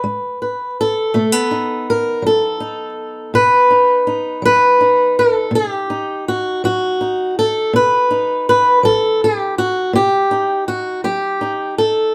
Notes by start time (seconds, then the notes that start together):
Already playing: B4
0.04 G#3
0.42 B4
0.81 A4
1.14 B2 A3
1.32 B3
1.51 D#4
1.90 A#4
2.22 F#3
2.27 A4
2.60 D#4
3.34 B2 B4
3.70 D#4
4.07 D#4
4.42 F#3 B4
4.81 D#4
5.19 A4
5.51 B2
5.55 G4
5.90 D#4
6.28 F#4
6.64 F#3 F#4
7.01 D#4
7.39 A4
7.73 B2 B4
8.11 D#4
8.49 B4
8.83 F#3 A4
9.24 G4
9.58 F#4
9.93 B2 G4
10.31 D#4
10.68 F#4
11.04 F#3 G4
11.41 D#4
11.78 A4